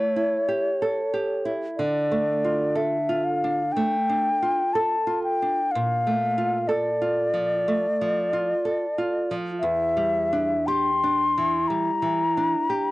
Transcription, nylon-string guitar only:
0.00 0.36 A3 soft
0.16 0.68 E4 soft
0.49 1.01 G4 soft
0.82 1.33 A4 soft
1.14 1.66 G4 soft
1.45 1.78 E4 soft
1.79 3.71 D3 soft
2.11 2.64 A3 soft
2.44 2.97 F4 soft
2.75 3.28 A4 soft
3.09 3.61 F4 soft
3.44 3.95 D4 soft
3.76 4.28 A3 soft
4.09 4.62 D4 soft
4.42 4.95 F4 soft
4.75 5.28 A4 soft
5.07 5.59 F4 soft
5.42 5.74 D4 soft
5.75 7.63 A#2 soft
6.07 6.57 A3 soft
6.38 6.89 F4 soft
6.69 7.21 A4 soft
7.02 7.53 F4 soft
7.34 7.86 F3 soft
7.68 8.20 A3 soft
8.01 8.53 F3 soft
8.33 8.85 F4 soft
8.65 9.17 A4 soft
8.98 9.50 F4 soft
9.31 9.63 F3 soft
9.63 11.66 E2 soft
9.97 10.55 G3 soft
10.33 10.90 D4 soft
10.68 11.23 G4 soft
11.04 11.57 D4 soft
11.38 11.90 E3 soft
11.70 12.22 G3 soft
12.02 12.55 E3 soft
12.37 12.89 D4 soft
12.70 12.91 G4 soft

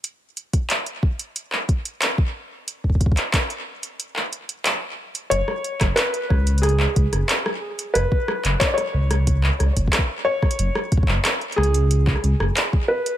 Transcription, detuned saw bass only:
5.31 5.42 F#1 medium
5.81 5.91 F#1 medium
6.30 6.87 C#2 medium
6.96 7.07 C#2 medium
7.13 7.23 F#1 medium
7.95 8.06 F#1 medium
8.45 8.55 F#1 medium
8.94 9.51 C#2 medium
9.60 9.71 C#2 medium
9.77 9.87 F#1 medium
10.59 10.70 F#1 loud
11.08 11.19 F#1 medium
11.58 12.14 C#2 medium
12.24 12.34 C#2 medium
12.40 12.51 F#1 medium

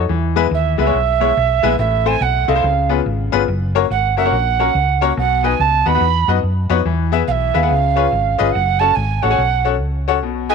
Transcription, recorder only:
0.54 0.78 E5 medium
0.80 1.75 E5 medium
1.79 2.08 E5 loud
2.06 2.23 G#5 loud
2.22 2.50 F#5 loud
2.48 2.91 F5 medium
3.91 4.15 F#5 medium
4.18 5.13 F#5 medium
5.18 5.46 F#5 loud
5.44 5.62 G#5 loud
5.60 5.88 A5 loud
5.87 6.28 B5 loud
7.27 7.56 E5 medium
7.27 7.32 F5 medium
7.54 8.53 F5 medium
8.51 8.80 F#5 loud
8.79 8.96 A5 loud
8.95 9.23 G#5 loud
9.22 9.64 F#5 loud
10.49 10.55 G#5 loud

